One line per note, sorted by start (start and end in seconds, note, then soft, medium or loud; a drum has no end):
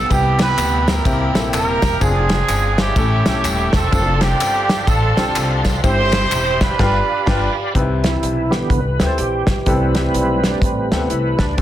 0.00 1.03 B3 medium
0.00 1.97 G5 medium
0.10 0.51 C2 loud
0.10 0.83 C3 medium
0.10 0.77 G3 medium
0.10 0.76 B3 medium
0.10 1.02 B3 medium
0.10 0.77 E4 medium
0.10 0.39 E4 medium
0.10 0.77 G4 medium
0.10 0.39 G4 loud
0.10 1.99 E5 medium
0.10 kick loud
0.10 ride bell medium
0.10 tambourine medium
0.39 0.87 E4 medium
0.39 0.87 G4 medium
0.39 0.84 B4 loud
0.39 snare loud
0.39 clap medium
0.39 ride bell medium
0.39 tambourine soft
0.58 0.98 D2 loud
0.58 clap loud
0.58 ride bell medium
0.58 tambourine loud
0.88 1.53 E4 medium
0.88 1.53 G4 medium
0.88 1.35 A#4 loud
0.88 snare loud
0.88 ride bell medium
0.88 tambourine medium
1.05 1.30 C2 loud
1.05 1.79 C3 medium
1.05 1.29 A#3 medium
1.05 2.00 A#3 medium
1.05 1.29 C4 medium
1.05 1.29 E4 medium
1.05 1.29 G4 medium
1.05 kick loud
1.05 ride bell medium
1.05 tambourine medium
1.34 1.50 A#1 medium
1.34 1.82 A#3 medium
1.34 1.82 C4 medium
1.34 1.82 E4 medium
1.34 1.82 A4 medium
1.34 snare loud
1.34 ride bell medium
1.34 tambourine medium
1.53 1.78 D#1 medium
1.53 1.98 E4 medium
1.53 1.98 G4 medium
1.53 1.98 A#4 loud
1.53 clap loud
1.53 ride bell medium
1.53 tambourine loud
1.82 1.98 E1 medium
1.82 kick medium
1.82 snare loud
1.82 ride bell medium
1.82 tambourine medium
2.00 2.42 F1 loud
2.00 2.67 C4 medium
2.00 2.93 C4 medium
2.00 2.68 D4 medium
2.00 2.93 D4 medium
2.00 2.68 F4 medium
2.00 2.96 G#4 medium
2.00 2.68 G#4 medium
2.00 2.78 G#4 loud
2.00 2.96 D5 medium
2.00 2.96 F5 medium
2.00 kick loud
2.00 ride bell medium
2.00 tambourine medium
2.29 snare loud
2.29 clap medium
2.29 ride bell medium
2.29 tambourine soft
2.49 2.89 G1 medium
2.49 clap loud
2.49 ride bell medium
2.49 tambourine loud
2.78 3.70 C#4 medium
2.78 3.70 E4 medium
2.78 3.70 G4 loud
2.78 snare loud
2.78 ride bell medium
2.78 tambourine soft
2.96 3.21 A1 loud
2.96 3.70 A2 medium
2.96 3.20 C#4 medium
2.96 3.20 E4 medium
2.96 3.20 G4 medium
2.96 3.90 A4 medium
2.96 3.20 A4 medium
2.96 3.91 E5 medium
2.96 3.91 G5 medium
2.96 3.91 C#6 medium
2.96 kick loud
2.96 ride bell medium
2.96 tambourine medium
3.25 3.46 B1 medium
3.25 3.73 C#4 medium
3.25 3.73 E4 medium
3.25 3.73 G4 medium
3.25 3.74 A4 medium
3.25 snare loud
3.25 ride bell medium
3.25 tambourine medium
3.44 3.69 D#1 medium
3.44 clap loud
3.44 ride bell medium
3.44 tambourine loud
3.73 3.89 E1 medium
3.73 4.21 C4 medium
3.73 4.20 D4 medium
3.73 4.21 A4 loud
3.73 kick medium
3.73 snare loud
3.73 ride bell medium
3.73 tambourine medium
3.91 4.33 F1 loud
3.91 4.58 C4 medium
3.91 4.59 D4 medium
3.91 4.59 F4 medium
3.91 5.81 A4 medium
3.91 4.59 A4 medium
3.91 5.81 D5 medium
3.91 5.81 F5 medium
3.91 6.76 C6 medium
3.91 kick loud
3.91 ride bell medium
3.91 tambourine medium
4.21 4.87 C4 medium
4.21 4.87 D4 medium
4.21 4.88 G4 loud
4.21 snare loud
4.21 clap medium
4.21 ride bell medium
4.21 tambourine soft
4.40 4.81 G1 medium
4.40 clap loud
4.40 ride bell medium
4.40 tambourine medium
4.69 snare loud
4.69 ride bell medium
4.69 tambourine medium
4.87 5.12 A1 loud
4.87 5.80 C4 medium
4.87 5.80 D4 medium
4.87 5.61 A4 medium
4.87 kick loud
4.87 ride bell medium
4.87 tambourine medium
5.17 5.33 B1 medium
5.17 5.64 C4 medium
5.17 5.64 D4 medium
5.17 5.65 F4 medium
5.17 5.65 G4 medium
5.17 snare loud
5.17 ride bell medium
5.17 tambourine medium
5.36 5.76 C2 medium
5.36 clap loud
5.36 ride bell medium
5.36 tambourine loud
5.65 kick medium
5.65 snare loud
5.65 ride bell medium
5.65 tambourine medium
5.83 6.24 G1 loud
5.83 6.57 G2 medium
5.83 6.50 C4 medium
5.83 6.50 E4 medium
5.83 6.76 E4 medium
5.83 6.50 G4 medium
5.83 7.73 G4 medium
5.83 6.76 G4 medium
5.83 6.57 C5 loud
5.83 6.50 C5 medium
5.83 6.79 C5 medium
5.83 6.79 E5 medium
5.83 kick loud
5.83 ride bell medium
5.83 tambourine medium
6.12 snare loud
6.12 clap medium
6.12 ride bell medium
6.12 tambourine soft
6.32 6.72 E1 medium
6.32 clap loud
6.32 ride bell medium
6.32 tambourine loud
6.61 7.53 D4 medium
6.61 7.53 F4 medium
6.61 7.53 B4 loud
6.61 kick medium
6.61 snare loud
6.61 ride bell medium
6.61 tambourine medium
6.78 6.99 G1 loud
6.78 6.99 G2 loud
6.78 6.99 D4 medium
6.78 6.99 F4 loud
6.78 6.99 G4 loud
6.78 7.00 B4 loud
6.78 7.74 D5 medium
6.78 7.74 F5 medium
6.78 7.74 B5 medium
6.78 kick loud
6.78 snare loud
6.78 crash medium
7.26 7.47 G1 loud
7.26 7.46 D4 medium
7.26 7.47 F4 loud
7.26 7.47 G4 medium
7.26 7.47 B4 medium
7.26 kick loud
7.26 snare loud
7.26 crash medium
7.74 8.16 C2 loud
7.74 8.48 C3 medium
7.74 11.54 E3 medium
7.74 11.54 G3 medium
7.74 8.42 C4 medium
7.74 7.82 D#4 medium
7.74 8.42 G4 medium
7.74 8.42 B4 medium
7.74 kick medium
7.74 closed hi-hat medium
7.80 8.45 E4 medium
8.04 8.53 E4 loud
8.04 snare medium
8.04 closed hi-hat medium
8.23 8.64 B1 medium
8.23 closed hi-hat medium
8.50 8.80 D3 medium
8.50 8.80 E3 medium
8.50 8.81 B3 medium
8.50 8.71 G4 loud
8.50 snare medium
8.50 closed hi-hat medium
8.70 8.95 C2 medium
8.70 9.04 B4 medium
8.70 kick loud
8.70 closed hi-hat medium
8.99 9.16 D2 medium
8.99 9.47 C4 medium
8.99 9.47 E4 medium
8.99 9.48 G4 medium
8.99 9.04 G#4 medium
8.99 9.19 A4 medium
8.99 9.05 B4 medium
8.99 snare loud
8.99 closed hi-hat medium
9.06 9.51 C5 medium
9.18 9.44 A#1 medium
9.18 9.49 G4 medium
9.18 closed hi-hat medium
9.47 9.64 B1 medium
9.47 9.67 G4 medium
9.47 kick medium
9.47 snare loud
9.47 closed hi-hat medium
9.66 10.07 C2 medium
9.66 10.40 C3 medium
9.66 10.91 G3 soft
9.66 11.57 A3 medium
9.66 9.73 B3 medium
9.66 10.62 C4 medium
9.66 10.33 E4 medium
9.66 10.40 E4 medium
9.66 10.34 G4 medium
9.66 10.34 A4 medium
9.66 11.55 B4 medium
9.66 kick medium
9.66 closed hi-hat medium
9.71 10.36 C4 medium
9.95 snare medium
9.95 closed hi-hat medium
10.14 10.55 B1 medium
10.14 closed hi-hat medium
10.44 10.61 D4 medium
10.44 snare medium
10.44 closed hi-hat medium
10.62 10.87 A1 medium
10.62 10.90 C4 medium
10.62 kick loud
10.62 closed hi-hat medium
10.91 11.08 D2 medium
10.91 11.08 C3 soft
10.91 11.09 G3 soft
10.91 11.09 B3 soft
10.91 11.39 C4 medium
10.91 11.39 E4 medium
10.91 11.40 G4 medium
10.91 11.40 A4 medium
10.91 snare loud
10.91 closed hi-hat medium
11.10 11.35 C2 medium
11.10 11.40 E4 medium
11.10 closed hi-hat medium
11.39 11.55 C#2 medium
11.39 11.62 D4 medium
11.39 kick medium
11.39 snare loud
11.39 closed hi-hat medium
11.57 11.62 D2 loud
11.57 11.62 D3 medium
11.57 11.62 E3 medium
11.57 11.62 F#3 medium
11.57 11.62 C4 medium
11.57 11.62 D4 medium
11.57 11.62 F#4 medium
11.57 kick loud
11.57 closed hi-hat medium